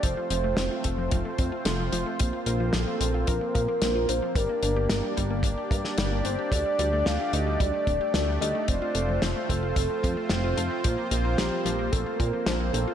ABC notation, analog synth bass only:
X:1
M:4/4
L:1/8
Q:1/4=111
K:Fmix
V:1 name="Analog synth bass" clef=bass
F,,, F,,, F,,, F,,, F,,, F,, F,,, F,,, | B,,, B,,, B,,, B,,, B,,, B,, B,,, B,,, | G,,, G,,, G,,, G,,, G,,, G,, G,,, G,,, | D,, D,, D,, D,, D,, D,,, D,, D,, |
F,,, F,,, F,,, F,,, F,,, F,, F,,, F,,, | B,,, B,,, B,,, B,,, B,,, B,, B,,, B,,, |]